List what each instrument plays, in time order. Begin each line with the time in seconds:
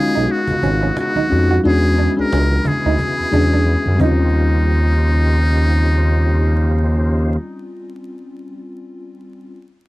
Already playing: fm electric piano G#3 C#4 D#4 F4 F#4 F5, tonewheel organ G#3 B3 D#4, muted trumpet G#4
0.15 analog synth bass B1, clean electric guitar D#4
0.29 muted trumpet F#4, muted clean electric guitar stroke, muted conga
0.47 analog synth bass G#1, cajon bass, muted conga
0.63 analog synth bass G#1, clean electric guitar C#4, cajon bass
0.83 clean electric guitar C#4, high conga
0.96 muted trumpet F#4, cajon slap, muted conga
1.16 clean electric guitar D#4, cajon slap, muted conga, high conga, low conga
1.29 analog synth bass F2, fm electric piano G#3 C#4 D#4 F#4, muted clean electric guitar stroke, high conga
1.49 clean electric guitar F#4, high conga
1.63 analog synth bass E2, tonewheel organ G#3 B3 E4, fm electric piano G#3 C#4 D4 F#4, muted trumpet G#4, muted conga
1.98 clean electric guitar D4
2.17 analog synth bass C#2, fm electric piano G#3 C#4 D4 G#4, muted trumpet A#4
2.30 analog synth bass C#2, clean electric guitar C#4, cajon slap, muted conga
2.51 muted conga, high conga
2.65 muted trumpet G#4, muted clean electric guitar stroke, cajon bass, low conga
2.86 analog synth bass D2, clean electric guitar D#4
2.99 muted clean electric guitar stroke, cajon bass, muted conga
3.18 analog synth bass E2, muted conga
3.31 analog synth bass E2, fm electric piano G#3 C#4 D4 G#4, clean electric guitar D4, cajon bass
3.52 clean electric guitar D4, high conga
3.65 cajon slap, muted conga
3.68 cajon slap
3.86 analog synth bass F#2, muted conga, high conga, low conga
3.95 fm electric piano G3 C4
4.00 analog synth bass D#2, tonewheel organ C#3 D#3 F4 G4 C5, fm electric piano C#4, clean electric guitar D#4, muted trumpet D#4, cajon bass, high conga
4.05 fm electric piano F4